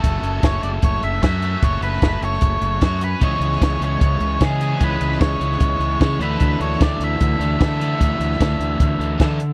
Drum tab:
HH |x-x-x-x-x-x-x-x-|x-x-x-x-x-x-x-x-|x-x-x-x-x-x-x-x-|x-x-x-x-x-x-x-x-|
SD |----o-------o---|---oo--o----o---|---oo-------o---|---oo--o----o---|
BD |o---o---o---o---|o---o---o---o---|o---o---o---o---|o---o---o---o---|

HH |x-x-x-x-x-x-x-x-|x-x-x-x-x-x-x-x-|
SD |---oo-------o---|---oo-------o---|
BD |o---o---o---o---|o---o---o---o---|